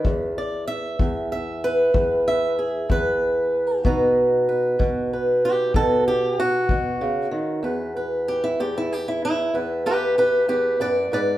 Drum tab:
BD |o--o--o--o--|o--o--o--o--|------------|